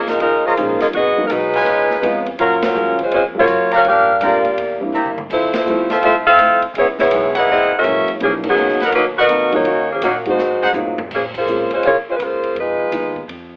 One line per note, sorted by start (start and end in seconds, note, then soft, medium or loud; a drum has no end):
0.00 0.20 F2 medium
0.00 0.10 A#3 medium
0.00 0.10 D#4 medium
0.07 0.21 G#3 medium
0.07 0.20 D#4 medium
0.07 0.20 F4 medium
0.07 0.21 A#4 medium
0.07 snare medium
0.07 ride soft
0.19 0.57 C#2 medium
0.19 0.45 C#3 soft
0.19 0.46 F3 soft
0.19 0.44 G#3 medium
0.19 0.46 A#3 soft
0.19 0.43 D#4 medium
0.19 0.47 D#4 soft
0.19 0.43 F4 medium
0.19 0.44 A#4 medium
0.19 ride medium
0.46 0.81 A#3 medium
0.46 0.54 F4 medium
0.46 0.81 F4 medium
0.46 0.81 G#4 medium
0.46 0.82 C5 medium
0.46 0.54 C#5 medium
0.46 0.55 D#5 medium
0.46 0.54 A#5 loud
0.56 0.80 A#1 medium
0.56 0.82 C#3 medium
0.56 0.94 F3 medium
0.56 0.82 F3 medium
0.56 0.94 G#3 medium
0.56 0.94 A#3 medium
0.56 0.83 A#3 medium
0.56 0.94 C#4 medium
0.56 0.94 D#4 medium
0.56 0.83 D#4 medium
0.56 hi-hat pedal soft
0.56 ride medium
0.80 0.88 A#3 medium
0.80 0.88 F4 medium
0.80 0.88 G#4 medium
0.80 0.87 D#5 medium
0.80 muted upright bass stroke soft
0.80 snare medium
0.80 ride soft
0.93 1.16 G#1 medium
0.93 1.18 G#2 soft
0.93 1.19 F#3 soft
0.93 1.20 B3 soft
0.93 1.24 B3 medium
0.93 1.20 D#4 medium
0.93 1.24 F#4 medium
0.93 1.24 G#4 medium
0.93 1.24 D#5 medium
0.93 ride medium
1.17 1.29 F#3 medium
1.17 1.29 G#3 medium
1.17 1.29 A#3 medium
1.17 1.29 B3 medium
1.17 1.29 D#4 medium
1.17 muted upright bass stroke soft
1.27 1.65 B1 medium
1.27 1.55 G#2 medium
1.27 1.55 F#3 medium
1.27 1.55 B3 medium
1.27 1.56 D#4 medium
1.27 1.31 A#4 medium
1.27 hi-hat pedal medium
1.27 ride medium
1.32 2.28 G#3 medium
1.32 2.28 D#4 medium
1.32 1.68 F#4 medium
1.32 2.27 B4 medium
1.53 2.01 F4 loud
1.53 2.01 B4 medium
1.53 2.01 C#5 medium
1.53 2.01 G#5 loud
1.53 ride soft
1.65 2.01 C#2 medium
1.65 1.91 C#3 soft
1.65 1.91 G#3 soft
1.65 1.92 B3 soft
1.65 1.92 F4 medium
1.65 ride medium
1.90 snare soft
2.02 2.38 F2 medium
2.02 2.27 C#3 medium
2.02 2.24 F3 medium
2.02 2.24 G#3 medium
2.02 2.28 G#3 medium
2.02 2.24 B3 medium
2.02 2.28 B3 medium
2.02 2.24 C#4 medium
2.02 2.25 F4 medium
2.02 2.29 F4 medium
2.02 hi-hat pedal soft
2.02 ride medium
2.26 ride soft
2.37 2.63 F#2 soft
2.37 2.74 F#2 medium
2.37 2.64 F3 medium
2.37 2.62 F#3 medium
2.37 2.65 A#3 medium
2.37 2.62 C#4 medium
2.37 2.65 C#4 medium
2.37 2.62 F4 medium
2.37 2.56 F#4 medium
2.37 2.62 A#4 medium
2.37 2.56 C#5 medium
2.37 2.56 F5 medium
2.37 2.56 A#5 medium
2.37 ride medium
2.62 2.98 F#3 medium
2.62 2.98 C#4 medium
2.62 2.98 F4 medium
2.62 2.98 A#4 medium
2.62 snare medium
2.62 ride medium
2.74 3.10 D#2 medium
2.74 3.00 F#2 medium
2.74 3.00 F3 medium
2.74 2.97 F#3 medium
2.74 2.97 G#3 medium
2.74 3.00 A#3 medium
2.74 2.97 A#3 medium
2.74 3.01 C#4 medium
2.74 2.97 C#4 medium
2.74 2.97 F4 medium
2.74 hi-hat pedal medium
2.99 3.13 C#4 medium
2.99 3.13 F4 medium
2.99 3.13 C5 medium
2.99 kick medium
2.99 ride soft
3.03 3.13 G#3 medium
3.11 3.46 F2 medium
3.11 3.36 F#2 soft
3.11 3.37 F3 soft
3.11 3.24 G#3 medium
3.11 3.37 A#3 soft
3.11 3.24 C#4 medium
3.11 3.38 C#4 soft
3.11 3.24 F4 medium
3.11 3.24 C5 medium
3.11 ride medium
3.35 3.47 F#3 medium
3.35 3.47 G#3 medium
3.35 3.47 A#3 medium
3.35 3.47 C#4 medium
3.35 3.47 F4 medium
3.39 3.72 A#3 medium
3.39 3.72 F4 medium
3.39 3.72 F#4 medium
3.39 3.72 C#5 medium
3.47 3.83 F#2 medium
3.47 3.73 F#2 medium
3.47 3.73 F3 medium
3.47 3.74 A#3 medium
3.47 3.74 C#4 medium
3.47 hi-hat pedal medium
3.47 ride medium
3.71 3.80 G4 medium
3.71 3.81 D5 medium
3.71 3.80 F5 medium
3.71 3.85 F5 loud
3.71 3.80 A#5 loud
3.71 ride soft
3.75 3.86 C#4 medium
3.75 3.86 F#4 medium
3.75 3.86 A#4 medium
3.84 4.09 G2 soft
3.84 4.19 G2 medium
3.84 4.10 F3 medium
3.84 4.11 A#3 medium
3.84 4.11 D4 soft
3.84 4.21 G4 medium
3.84 ride medium
3.89 4.21 D4 medium
3.89 4.21 A#4 medium
3.89 4.21 F5 loud
4.20 4.56 F2 medium
4.20 4.46 G2 medium
4.20 4.46 F3 medium
4.20 4.42 G3 medium
4.20 4.42 A3 soft
4.20 4.42 A#3 medium
4.20 4.46 A#3 medium
4.20 4.42 D4 soft
4.20 4.47 D4 medium
4.20 4.43 F4 medium
4.20 4.37 G4 medium
4.20 4.37 D5 medium
4.20 4.37 F5 medium
4.20 4.38 A#5 medium
4.20 hi-hat pedal medium
4.20 ride medium
4.25 4.85 A#3 medium
4.25 4.57 F4 medium
4.25 4.86 G4 medium
4.25 4.85 D5 medium
4.45 ride soft
4.56 4.92 E2 medium
4.56 4.82 C3 soft
4.56 4.82 G3 soft
4.56 4.83 A#3 soft
4.56 4.83 E4 soft
4.56 ride medium
4.80 4.92 G3 medium
4.80 4.92 A#3 medium
4.80 4.92 C4 medium
4.80 4.93 D4 medium
4.80 4.92 E4 medium
4.92 5.28 G2 medium
4.92 5.18 C3 medium
4.92 5.19 G3 medium
4.92 5.19 A#3 medium
4.92 5.20 E4 medium
4.92 5.10 G4 medium
4.92 5.10 C5 medium
4.92 5.10 E5 medium
4.92 5.10 A#5 medium
4.92 hi-hat pedal soft
5.06 mid tom medium
5.18 mid tom medium
5.29 5.65 F2 medium
5.29 5.55 F3 soft
5.29 5.56 A3 soft
5.29 5.53 A3 medium
5.29 5.56 C4 soft
5.29 5.54 E4 medium
5.29 5.56 E4 soft
5.29 5.54 C5 medium
5.29 kick medium
5.29 crash medium
5.33 5.54 F4 medium
5.53 5.89 A3 medium
5.53 5.89 E4 medium
5.53 5.89 F4 medium
5.53 5.89 C5 medium
5.53 snare medium
5.53 ride medium
5.65 6.01 E2 medium
5.65 5.87 F3 medium
5.65 5.92 F3 medium
5.65 5.87 G3 medium
5.65 5.87 A3 medium
5.65 5.92 A3 medium
5.65 5.88 C4 medium
5.65 5.92 C4 medium
5.65 5.88 E4 medium
5.65 5.92 E4 medium
5.65 hi-hat pedal medium
5.90 6.03 C4 medium
5.90 6.36 F4 medium
5.90 6.03 F4 medium
5.90 6.03 A4 medium
5.90 6.36 C5 medium
5.90 6.37 E5 medium
5.90 6.03 E5 medium
5.90 6.36 A5 medium
5.90 snare medium
5.90 ride soft
6.02 6.37 C2 medium
6.02 6.27 F3 soft
6.02 6.28 A3 soft
6.02 6.15 C4 medium
6.02 6.29 C4 soft
6.02 6.15 F4 medium
6.02 6.15 A4 medium
6.02 6.15 E5 loud
6.02 ride medium
6.06 6.29 E4 soft
6.27 6.60 C4 medium
6.27 6.60 A4 medium
6.27 6.61 E5 medium
6.27 6.60 F5 loud
6.38 6.60 D2 medium
6.38 6.64 F3 medium
6.38 6.64 A3 medium
6.38 6.64 C4 medium
6.38 6.65 E4 medium
6.38 hi-hat pedal medium
6.38 ride medium
6.62 muted upright bass stroke soft
6.62 kick medium
6.62 ride soft
6.74 7.10 C#2 medium
6.74 7.00 C#3 soft
6.74 7.01 G#3 soft
6.74 6.88 B3 medium
6.74 7.01 B3 medium
6.74 6.88 G#4 medium
6.74 ride medium
6.78 6.88 E4 medium
6.78 7.02 E4 medium
6.78 6.88 C#5 medium
6.99 7.34 B3 medium
6.99 7.33 E4 medium
6.99 7.33 G#4 medium
6.99 7.33 C#5 medium
6.99 snare medium
7.11 7.46 B1 medium
7.11 7.36 C#3 medium
7.11 7.37 G#3 medium
7.11 7.37 B3 medium
7.11 7.38 E4 medium
7.11 hi-hat pedal medium
7.11 ride medium
7.35 7.49 B3 medium
7.35 7.81 E4 medium
7.35 7.49 G#4 medium
7.35 7.82 A#4 medium
7.35 7.82 C#5 medium
7.35 7.50 D#5 loud
7.35 7.81 F#5 loud
7.35 ride medium
7.39 7.50 E4 medium
7.47 7.82 F#1 medium
7.47 7.72 F#2 soft
7.47 7.73 E3 soft
7.47 7.74 A#3 soft
7.47 7.74 C#4 soft
7.52 7.72 C4 medium
7.52 7.72 E4 medium
7.52 7.72 G#4 medium
7.52 7.72 D#5 loud
7.78 8.11 C#4 medium
7.78 8.11 F#4 medium
7.78 8.11 A#4 medium
7.78 8.11 E5 loud
7.82 8.05 A#1 medium
7.82 8.09 F#2 medium
7.82 8.09 E3 medium
7.82 8.20 F#3 medium
7.82 8.20 G#3 medium
7.82 8.20 A#3 medium
7.82 8.10 A#3 medium
7.82 8.20 C#4 medium
7.82 8.10 C#4 medium
7.82 8.20 E4 medium
7.82 hi-hat pedal medium
7.82 ride medium
8.07 muted upright bass stroke soft
8.07 ride soft
8.20 8.54 B1 medium
8.20 8.45 B2 soft
8.20 8.46 F#3 soft
8.20 8.42 G3 medium
8.20 8.46 A#3 soft
8.20 8.42 B3 medium
8.20 8.42 C4 medium
8.20 8.42 D4 medium
8.20 8.47 D#4 medium
8.20 8.42 E4 medium
8.20 8.34 G#4 medium
8.20 ride medium
8.24 8.35 F3 medium
8.24 8.35 A#3 medium
8.24 8.34 C#4 medium
8.43 8.76 F#3 medium
8.43 8.76 B3 medium
8.43 8.76 C#4 medium
8.43 8.76 D#4 medium
8.43 8.76 A#4 medium
8.43 kick medium
8.43 crash medium
8.48 8.80 F#3 medium
8.48 8.80 B3 medium
8.48 8.81 D#4 medium
8.48 8.81 G#4 medium
8.55 8.78 C#2 medium
8.55 8.81 B2 medium
8.55 8.82 F#3 medium
8.55 8.82 A#3 medium
8.55 8.82 D#4 medium
8.55 hi-hat pedal medium
8.69 snare soft
8.80 8.90 D#4 medium
8.80 8.90 A#4 medium
8.80 8.90 B4 medium
8.80 8.90 F#5 medium
8.80 muted upright bass stroke soft
8.80 snare soft
8.80 ride medium
8.84 8.94 F#3 medium
8.84 8.96 B3 medium
8.84 8.94 D#4 medium
8.84 8.95 A#4 medium
8.91 9.27 D#2 medium
8.91 9.17 B2 soft
8.91 9.18 F#3 soft
8.91 9.05 F#3 medium
8.91 9.19 A#3 medium
8.91 9.19 D#4 soft
8.91 ride medium
8.95 9.05 A#3 medium
8.95 9.06 D#4 medium
8.95 9.06 B4 medium
9.17 9.51 B3 medium
9.17 9.26 D#4 medium
9.17 9.51 F#4 medium
9.17 9.26 A#4 loud
9.17 9.52 A#4 medium
9.17 9.26 B4 medium
9.17 9.51 D#5 loud
9.17 9.26 F#5 loud
9.27 9.64 F2 medium
9.27 9.54 B2 medium
9.27 9.54 F#3 medium
9.27 9.55 A#3 medium
9.27 9.55 D#4 medium
9.27 hi-hat pedal soft
9.27 ride medium
9.52 9.64 F#3 medium
9.52 9.64 A#3 medium
9.52 9.90 A#3 medium
9.52 9.64 C#4 medium
9.52 9.64 D#4 medium
9.52 9.64 F4 medium
9.52 9.90 F#4 medium
9.52 9.91 C#5 loud
9.52 ride soft
9.56 9.91 D#4 medium
9.64 10.00 D#2 medium
9.64 9.90 D#3 soft
9.64 9.90 A#3 soft
9.64 9.91 C#4 medium
9.64 9.91 F#4 medium
9.64 ride medium
9.92 10.03 F3 medium
9.92 10.02 A#3 medium
9.92 10.02 C#4 medium
9.92 10.03 G#4 medium
10.02 10.37 A#2 medium
10.02 10.27 D#3 medium
10.02 10.14 D#3 medium
10.02 10.27 A#3 medium
10.02 10.14 A#3 medium
10.02 10.14 C#4 medium
10.02 10.28 C#4 medium
10.02 10.18 D#4 medium
10.02 10.13 F#4 medium
10.02 10.28 F#4 medium
10.02 10.18 A#4 medium
10.02 10.18 C#5 medium
10.02 10.18 F#5 medium
10.02 hi-hat pedal medium
10.02 ride medium
10.25 10.37 G#3 medium
10.25 10.73 G#3 medium
10.25 10.37 A#3 medium
10.25 10.37 C4 medium
10.25 10.37 D#4 medium
10.25 10.73 D#4 medium
10.25 10.37 F#4 medium
10.25 ride soft
10.30 10.73 F#4 medium
10.30 10.73 C5 medium
10.37 10.62 G#2 soft
10.37 10.72 G#2 medium
10.37 10.63 F#3 soft
10.37 10.63 C4 soft
10.37 10.64 D#4 soft
10.37 snare medium
10.62 10.71 D#4 medium
10.62 10.71 G#4 medium
10.62 10.71 C5 medium
10.62 10.71 F#5 loud
10.62 floor tom medium
10.72 10.99 G#2 medium
10.72 11.09 A2 medium
10.72 10.99 F#3 medium
10.72 10.96 G#3 medium
10.72 10.96 A#3 medium
10.72 10.96 C4 medium
10.72 11.00 C4 medium
10.72 10.96 D#4 medium
10.72 11.00 D#4 medium
10.72 10.96 F4 medium
10.72 floor tom medium
10.72 hi-hat pedal medium
10.98 floor tom medium
11.11 11.45 A#2 medium
11.11 kick medium
11.11 crash medium
11.15 11.25 F3 medium
11.15 11.25 A#3 medium
11.15 11.25 C#4 medium
11.15 11.25 G#4 medium
11.34 11.70 F4 medium
11.34 kick medium
11.34 crash medium
11.38 11.71 A#3 medium
11.38 11.71 G#4 medium
11.38 11.70 C5 medium
11.46 11.69 A#1 medium
11.46 11.68 G#3 medium
11.46 11.69 A#3 medium
11.46 11.69 C4 medium
11.46 11.69 C#4 medium
11.46 11.69 F4 medium
11.46 hi-hat pedal medium
11.70 11.84 C#4 medium
11.70 muted upright bass stroke soft
11.70 kick medium
11.70 ride soft
11.74 11.85 G#3 medium
11.74 11.85 F4 medium
11.74 11.85 C5 medium
11.83 12.06 C2 medium
11.83 11.97 A#3 medium
11.83 11.96 F4 medium
11.83 11.96 G#4 medium
11.83 11.96 C#5 loud
11.83 ride medium
12.07 12.16 G#3 medium
12.07 12.16 C#4 medium
12.07 12.16 F4 medium
12.07 12.16 C5 medium
12.07 muted upright bass stroke soft
12.16 12.54 C#2 medium
12.16 12.21 B4 medium
12.16 hi-hat pedal medium
12.16 ride medium
12.23 12.58 A#3 medium
12.23 12.57 F4 medium
12.23 12.58 G#4 medium
12.23 12.58 C5 medium
12.43 ride soft
12.55 12.91 F2 medium
12.55 13.26 G#3 medium
12.55 13.27 D#4 medium
12.55 13.26 F4 medium
12.55 ride medium
12.60 13.27 B4 medium
12.80 kick soft
12.92 13.27 D#2 medium
12.92 13.14 F3 medium
12.92 13.14 G#3 soft
12.92 13.14 B3 soft
12.92 13.14 D#4 soft
12.92 13.14 F4 medium
12.92 hi-hat pedal medium
12.92 ride medium
13.16 kick medium
13.28 13.56 F2 medium
13.28 ride medium